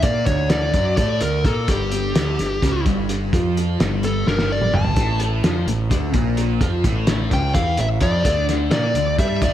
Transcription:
0.02 0.25 A#2 medium
0.02 0.26 A#3 medium
0.02 0.27 A#4 loud
0.02 0.25 D5 loud
0.02 kick loud
0.02 closed hi-hat medium
0.26 0.71 D2 loud
0.26 0.73 D3 medium
0.26 0.73 D4 medium
0.26 0.49 C#5 medium
0.26 kick loud
0.26 closed hi-hat medium
0.50 0.96 D5 medium
0.50 snare loud
0.50 closed hi-hat loud
0.74 0.96 F#2 medium
0.74 0.97 F#3 medium
0.74 0.98 F#4 loud
0.74 kick loud
0.74 closed hi-hat medium
0.97 1.20 A2 loud
0.97 1.21 A3 medium
0.97 1.21 A4 loud
0.97 1.19 D5 medium
0.97 kick loud
0.97 closed hi-hat medium
1.21 1.43 D2 medium
1.21 1.40 D3 medium
1.21 1.43 A#4 medium
1.21 closed hi-hat medium
1.44 1.67 A#2 loud
1.44 1.68 A#3 medium
1.44 1.70 A4 medium
1.44 1.68 A#4 medium
1.44 kick loud
1.44 closed hi-hat medium
1.68 2.12 G1 medium
1.68 2.15 G2 loud
1.68 2.15 G3 loud
1.68 2.83 G4 medium
1.68 kick loud
1.68 closed hi-hat loud
1.92 closed hi-hat medium
2.15 2.37 D2 medium
2.15 2.38 D3 medium
2.15 2.38 D4 loud
2.15 snare loud
2.15 closed hi-hat loud
2.39 2.61 G1 medium
2.39 2.58 G2 medium
2.39 snare soft
2.39 closed hi-hat medium
2.62 2.84 C#2 medium
2.62 2.85 C#3 medium
2.62 2.85 C#4 loud
2.62 kick loud
2.62 snare soft
2.62 closed hi-hat loud
2.86 3.29 G1 medium
2.86 3.32 G2 medium
2.86 3.32 G3 medium
2.86 kick loud
2.86 closed hi-hat medium
3.09 closed hi-hat medium
3.33 3.76 F2 medium
3.33 3.79 F3 loud
3.33 3.79 F4 loud
3.33 kick loud
3.33 closed hi-hat medium
3.57 closed hi-hat medium
3.80 4.23 G1 medium
3.80 4.25 G2 medium
3.80 4.26 G3 loud
3.80 snare loud
3.80 closed hi-hat medium
4.03 4.26 A4 medium
4.03 closed hi-hat medium
4.26 4.70 G1 medium
4.26 4.71 G2 medium
4.26 4.72 G3 loud
4.26 4.49 A#4 medium
4.26 snare medium
4.39 snare medium
4.52 4.75 D5 medium
4.62 mid tom medium
4.73 4.95 G1 medium
4.73 4.96 G2 medium
4.73 4.96 G3 medium
4.73 5.18 A5 medium
4.73 mid tom loud
4.85 floor tom medium
4.96 5.40 A1 medium
4.96 5.43 A2 medium
4.96 5.43 A3 loud
4.96 kick loud
4.96 closed hi-hat medium
5.20 closed hi-hat medium
5.43 5.65 F2 medium
5.43 5.67 F3 medium
5.43 5.67 F4 medium
5.43 snare loud
5.43 closed hi-hat medium
5.66 5.88 A1 medium
5.66 5.86 A2 medium
5.66 closed hi-hat medium
5.90 6.13 D2 medium
5.90 6.14 D3 medium
5.90 6.15 D4 loud
5.90 kick loud
5.90 closed hi-hat loud
6.14 6.58 A#1 loud
6.14 6.60 A#2 medium
6.14 6.61 A#3 medium
6.14 kick loud
6.14 closed hi-hat medium
6.37 closed hi-hat medium
6.61 6.83 F2 medium
6.61 6.84 F3 loud
6.61 6.84 F4 loud
6.61 kick loud
6.61 closed hi-hat medium
6.84 7.28 A1 medium
6.84 7.31 A2 medium
6.84 7.31 A3 medium
6.84 kick loud
6.84 closed hi-hat medium
7.07 snare loud
7.07 closed hi-hat loud
7.31 7.53 C#2 medium
7.31 7.54 C#3 medium
7.31 7.54 C#4 loud
7.31 7.54 G5 loud
7.31 kick loud
7.31 closed hi-hat medium
7.55 7.76 E2 medium
7.55 7.78 E3 loud
7.55 7.78 E4 loud
7.55 7.79 F5 medium
7.55 kick loud
7.55 closed hi-hat medium
7.77 8.00 A1 medium
7.77 7.97 A2 medium
7.77 7.86 E5 medium
7.77 closed hi-hat medium
8.01 8.23 F2 loud
8.01 8.24 F3 medium
8.01 8.25 F4 loud
8.01 8.45 D5 medium
8.01 kick loud
8.01 closed hi-hat medium
8.25 8.68 D2 loud
8.25 8.71 D3 medium
8.25 8.71 D4 loud
8.25 kick loud
8.25 closed hi-hat medium
8.49 snare soft
8.49 closed hi-hat medium
8.71 8.93 A#2 medium
8.71 8.95 A#3 loud
8.71 8.95 A#4 loud
8.71 9.15 D5 medium
8.71 snare loud
8.71 closed hi-hat medium
8.95 9.17 D2 medium
8.95 9.14 D3 medium
8.95 closed hi-hat medium
9.18 9.40 G2 medium
9.18 9.41 G3 medium
9.18 9.41 G4 loud
9.18 9.41 E5 loud
9.18 kick loud
9.18 closed hi-hat medium
9.42 9.53 D#2 loud
9.42 9.53 D#3 loud
9.42 9.53 D#4 loud
9.42 9.53 D5 medium
9.42 kick loud
9.42 closed hi-hat medium

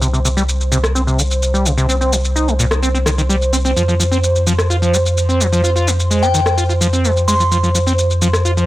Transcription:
0.00 3.74 C2 medium
0.00 0.08 C3 medium
0.00 8.66 C5 medium
0.00 shaker soft
0.13 0.20 C3 medium
0.13 shaker soft
0.25 0.29 C3 medium
0.25 shaker medium
0.37 0.43 G3 loud
0.37 shaker soft
0.49 shaker soft
0.61 shaker soft
0.72 0.78 C3 medium
0.72 shaker medium
0.84 cross-stick medium
0.84 shaker soft
0.95 1.02 C4 medium
0.95 shaker soft
1.07 1.20 C3 medium
1.07 shaker soft
1.18 1.22 D#3 medium
1.18 shaker medium
1.31 shaker soft
1.43 shaker soft
1.54 1.67 G3 medium
1.54 shaker soft
1.65 1.72 C3 loud
1.65 shaker medium
1.77 1.87 C3 loud
1.77 shaker soft
1.89 1.95 C4 medium
1.89 shaker soft
2.01 2.14 C4 medium
2.01 shaker soft
2.12 2.16 D#3 medium
2.12 shaker medium
2.25 shaker soft
2.36 2.49 D#4 medium
2.36 shaker soft
2.48 2.54 G3 medium
2.48 shaker soft
2.59 2.66 A#2 medium
2.59 shaker medium
2.71 cross-stick medium
2.71 shaker soft
2.83 2.89 C4 medium
2.83 shaker soft
2.94 2.98 C4 medium
2.94 shaker soft
3.06 3.10 D#3 medium
3.06 cross-stick medium
3.06 shaker medium
3.18 3.22 D#3 medium
3.18 shaker soft
3.29 3.36 G3 loud
3.29 shaker soft
3.42 shaker soft
3.53 3.57 C4 loud
3.53 shaker medium
3.65 3.71 C4 loud
3.65 shaker soft
3.76 8.66 F2 medium
3.76 3.83 F3 medium
3.76 shaker soft
3.88 3.95 F3 medium
3.88 shaker soft
4.00 4.04 F3 medium
4.00 shaker medium
4.12 4.18 C4 loud
4.12 shaker soft
4.24 shaker soft
4.36 shaker soft
4.47 4.53 F3 medium
4.47 shaker medium
4.59 cross-stick medium
4.59 shaker soft
4.70 4.77 F4 medium
4.70 shaker soft
4.82 4.95 F3 medium
4.82 shaker soft
4.93 4.97 G#3 medium
4.93 shaker medium
5.06 shaker soft
5.18 shaker soft
5.29 5.42 C4 medium
5.29 shaker soft
5.40 5.47 F3 loud
5.40 shaker medium
5.52 5.62 F3 loud
5.52 shaker soft
5.64 5.70 F4 medium
5.64 shaker soft
5.76 5.89 F4 medium
5.76 shaker soft
5.87 5.91 G#3 medium
5.87 shaker medium
6.00 shaker soft
6.10 6.24 G#3 medium
6.10 shaker soft
6.23 6.29 C4 medium
6.23 6.69 G5 medium
6.23 shaker soft
6.34 6.41 D#3 medium
6.34 shaker medium
6.46 cross-stick medium
6.46 shaker soft
6.58 6.64 F4 medium
6.58 shaker soft
6.69 6.73 F4 medium
6.69 shaker soft
6.81 6.87 F3 loud
6.81 shaker medium
6.93 7.06 C4 medium
6.93 shaker soft
7.04 7.11 G#3 loud
7.04 shaker soft
7.17 shaker soft
7.28 7.34 G#3 loud
7.28 7.75 C6 medium
7.28 shaker medium
7.40 7.44 F3 medium
7.40 shaker soft
7.51 7.58 F3 medium
7.51 shaker soft
7.63 7.69 F3 medium
7.63 shaker soft
7.75 7.79 F3 medium
7.75 shaker medium
7.87 7.93 C4 loud
7.87 shaker soft
7.99 shaker soft
8.11 shaker soft
8.22 8.28 F3 loud
8.22 shaker medium
8.33 cross-stick medium
8.33 shaker soft
8.45 8.52 F4 medium
8.45 shaker soft
8.57 8.66 F3 medium
8.57 shaker soft

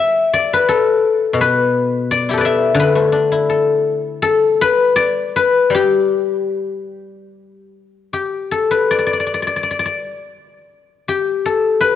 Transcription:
0.00 0.54 G4 medium
0.00 0.53 B4 loud
0.00 0.33 D5 loud
0.00 1.65 E5 loud
0.00 1.13 G5 loud
0.34 2.11 D5 medium
0.53 1.40 B4 medium
0.69 2.33 A4 medium
1.33 2.77 B2 medium
1.41 2.37 B4 loud
2.11 2.40 D5 medium
2.29 3.31 E4 soft
2.29 4.66 G4 soft
2.33 3.49 A4 medium
2.38 2.80 B4 medium
2.38 2.79 D5 medium
2.45 4.17 E5 loud
2.74 4.96 D3 medium
2.80 3.13 B4 medium
2.95 4.42 A3 soft
3.12 4.60 D4 medium
3.12 4.64 D5 medium
3.32 4.79 E4 medium
3.50 4.21 A4 medium
4.22 6.42 A4 loud
4.61 5.36 B4 loud
4.96 6.80 D5 loud
5.36 7.40 B4 loud
5.70 8.09 G3 medium
5.75 8.10 G4 medium
8.13 10.48 G4 medium
8.51 10.71 A4 medium
8.71 10.75 B4 medium
8.91 8.98 D5 medium
8.98 9.06 D5 soft
9.06 9.13 D5 medium
9.13 9.19 D5 soft
9.20 9.26 D5 soft
9.26 9.34 D5 soft
9.34 9.42 D5 soft
9.42 9.47 D5 soft
9.47 9.56 D5 soft
9.56 9.63 D5 soft
9.63 9.70 D5 soft
9.71 9.79 D5 soft
9.79 9.85 D5 medium
9.85 11.70 D5 soft
11.08 11.96 G4 medium
11.46 11.96 A4 medium
11.81 11.96 B4 medium

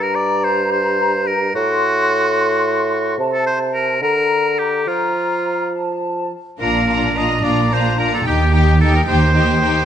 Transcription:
0.00 1.50 G2 soft
0.00 0.17 A#4 soft
0.00 1.50 A#5 soft
0.15 0.46 D5 soft
0.44 0.71 C5 soft
0.72 1.29 C5 medium
1.27 1.54 A#4 soft
1.54 3.16 A2 soft
1.54 3.16 F#4 medium
1.54 3.15 C6 soft
3.18 3.97 C3 soft
3.18 3.97 A5 soft
3.33 3.45 A4 soft
3.46 3.59 C5 medium
3.74 4.01 A#4 soft
4.01 4.85 D3 soft
4.01 4.60 A#4 medium
4.01 4.85 A#5 soft
4.59 4.89 G4 soft
4.86 6.29 F3 soft
4.86 5.74 F4 soft
4.86 5.71 A#5 soft
5.73 6.30 A5 soft
6.60 7.35 A#1 soft
6.60 7.35 A#2 soft
6.60 6.88 D4 soft
6.60 6.87 F4 soft
6.60 7.19 A#4 soft
6.60 6.88 A#5 soft
6.88 7.16 D4 soft
6.88 7.15 F4 soft
6.88 7.16 A#5 soft
7.16 7.43 D4 soft
7.16 7.43 F4 soft
7.16 7.45 D#5 soft
7.16 7.43 A#5 soft
7.44 8.17 A#1 soft
7.44 8.17 A#2 soft
7.44 7.70 D4 soft
7.44 7.70 F4 soft
7.44 7.75 D5 soft
7.44 7.70 A#5 soft
7.71 7.98 D4 soft
7.71 7.97 F4 soft
7.71 7.98 C5 soft
7.71 7.98 A#5 soft
7.99 8.26 D4 soft
7.99 8.26 F4 soft
7.99 8.13 A#4 soft
7.99 8.26 A#5 soft
8.14 8.26 A4 soft
8.25 8.99 D#2 soft
8.25 8.53 D#4 soft
8.25 8.52 G4 soft
8.25 8.54 G4 soft
8.25 8.52 G5 soft
8.53 8.80 D#4 soft
8.53 8.80 G4 soft
8.53 8.80 G5 soft
8.81 9.07 D#4 soft
8.81 9.07 G4 soft
8.81 8.94 A4 soft
8.81 9.06 G5 soft
8.96 9.02 A#4 soft
9.08 9.81 D#2 soft
9.08 9.34 D#4 soft
9.08 9.34 G4 soft
9.08 9.85 C5 medium
9.08 9.34 G5 soft
9.35 9.61 D#4 soft
9.35 9.61 G4 soft
9.35 9.61 G5 soft
9.62 9.85 D#4 soft
9.62 9.85 G4 soft
9.62 9.85 G5 soft

